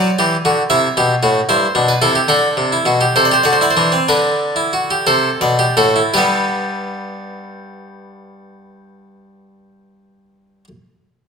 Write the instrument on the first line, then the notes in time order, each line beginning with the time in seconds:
harpsichord
Already playing: D5
0.19 E3 G4
0.45 D3 F#4
0.70 C3 E4 E5
0.97 B2 G4
1.23 A2 F#4
1.49 G2 E4 C5
1.75 B2 D4
1.88 B4
2.02 C3 E4 A4
2.15 G4
2.28 D3 D4 A4
2.57 C3
2.73 E4
2.85 B2 F#4
3.01 G4
3.16 C3 A4 C5
3.25 D5
3.31 G4 C5
3.44 D3 F#4 D5
3.53 C5
3.61 E4 D5
3.71 C5
3.77 E3 D4
3.92 C4
4.08 D3 D4 B4
4.56 E4
4.73 F#4
4.91 G4
5.07 C3 A4 C5
5.41 B2 D5
5.59 G4
5.77 A2 F#4 A4
5.96 E4
6.14 G2 G3 B3 G4 B4